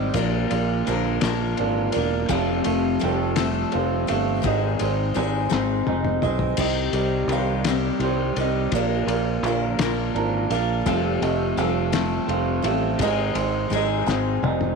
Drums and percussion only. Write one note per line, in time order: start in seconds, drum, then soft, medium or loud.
0.14 kick loud
0.14 ride loud
0.51 ride medium
0.87 ride medium
1.21 snare loud
1.21 ride loud
1.57 ride medium
1.92 ride medium
2.29 kick loud
2.29 ride medium
2.64 ride medium
3.01 ride medium
3.36 snare loud
3.36 ride loud
3.72 ride medium
4.08 ride medium
4.44 kick loud
4.44 ride medium
4.79 ride medium
5.15 ride medium
5.51 snare medium
5.87 high tom medium
6.05 mid tom medium
6.22 mid tom medium
6.39 floor tom medium
6.57 kick loud
6.57 crash loud
6.93 ride medium
7.29 ride medium
7.64 snare loud
7.64 ride loud
8.00 ride medium
8.36 ride medium
8.72 kick loud
8.72 ride loud
9.08 ride medium
9.44 ride medium
9.79 snare loud
9.79 ride medium
10.16 ride medium
10.51 ride medium
10.86 kick loud
10.86 ride loud
11.22 ride medium
11.58 ride medium
11.93 snare loud
11.93 ride medium
12.29 ride medium
12.64 ride medium
12.99 kick loud
12.99 ride loud
13.35 ride medium
13.72 ride medium
14.08 snare medium
14.44 high tom medium
14.61 mid tom medium